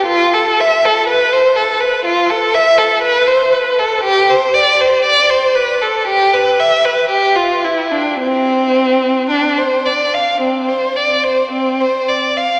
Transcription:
\new Staff \with { instrumentName = "Violin" } { \time 4/4 \key c \major \tempo 4 = 58 f'16 a'16 e''16 a'16 b'16 c''16 a'16 b'16 f'16 a'16 e''16 a'16 b'16 c''16 b'16 a'16 | g'16 c''16 d''16 c''16 d''16 c''16 b'16 a'16 g'16 b'16 e''16 b'16 g'16 f'16 e'16 d'16 | c'4 d'16 c''16 d''16 f''16 c'16 c''16 d''16 c''16 c'16 c''16 d''16 f''16 | }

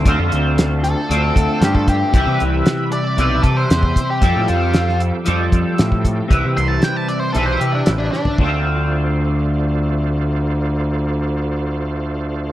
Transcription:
<<
  \new Staff \with { instrumentName = "Tonewheel organ" } { \time 4/4 \key d \dorian \tempo 4 = 115 << { f''1 | g''1~ | g''1~ | g''1 |
<f' a' c'' d'' f''>1~ | <f' a' c'' d'' f''>1 | } \\ { <a' d''>1 | <e'' b''>1 | <a' f''>1 | <b' e''>1 |
r1 | r1 | } >> }
  \new Staff \with { instrumentName = "Lead electric guitar" } { \time 4/4 \key d \dorian r4. a'4. g'16 a'16 g'8 | g'8 r4 d''4 a'16 c''4 g'16~ | g'8 f'4 r2 r8 | r8 c'''16 a''16 g''16 a''16 d''16 c''16 a'16 c''16 g'16 d'16 r16 d'16 d'8 |
r1 | r1 | }
  \new Staff \with { instrumentName = "Clean electric guitar" } { \time 4/4 \key d \dorian <d a c' f' c''>2 <d a c' f' c''>2 | <c e g c' e' b'>2 <c e g c' e' b'>2 | <f g c' g' a'>2 <f g c' g' a'>2 | <c e g c' e' b'>2 <c e g c' e' b'>2 |
<d a c' f' c''>1~ | <d a c' f' c''>1 | }
  \new Staff \with { instrumentName = "Picked electric bass" } { \clef bass \time 4/4 \key d \dorian d,16 f,16 d,4. d,8 d,16 r16 g,4 | c,16 c16 c,8 r4 b,,8 c8 e,8 r8 | f,16 a,16 f,4. f,8 f,16 r16 a,4 | c,16 c16 c,8 r4 b,,8 c8 a,,8 r8 |
d,1~ | d,1 | }
  \new DrumStaff \with { instrumentName = "Drums" } \drummode { \time 4/4 <hh bd>8 hh8 <hh sn>8 hh8 hh8 <hh bd>8 <hh sn>16 bd16 <hh bd>8 | <hh bd>8 hh8 <hh sn>8 hh8 hh8 <hh bd>8 <hh sn>16 bd16 <hh bd>8 | <hh bd>8 hh8 <hh sn>16 sn16 hh8 hh8 <hh bd>8 <hh sn>16 bd16 <hh bd>8 | <hh bd>8 hh8 <hh sn>8 hh8 hh8 hh8 <hh sn>8 sn16 tomfh16 |
bd4 r4 r4 r4 | r4 r4 r4 r4 | }
>>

